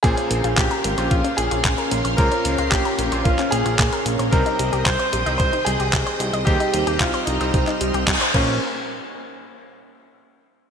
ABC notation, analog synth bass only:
X:1
M:4/4
L:1/16
Q:1/4=112
K:Bbdor
V:1 name="Analog synth bass" clef=bass
B,,, z B,,, B,,, B,,, z A,,, B,,, B,,, z B,,, B,,, B,,, z B,,, B,,, | D,, z D,, D,, B,,, z B,,, B,,, B,,, z B,,, B,,, B,,, z B,,, B,,, | C,, z C,, C,, C,, z B,,, C,, C,, z C,, C,, C,, z C,, C,, | E,, z E,, E,, C,, z C,, C,, C,, z C,, C,, C,, z B,,,2 |
z16 |]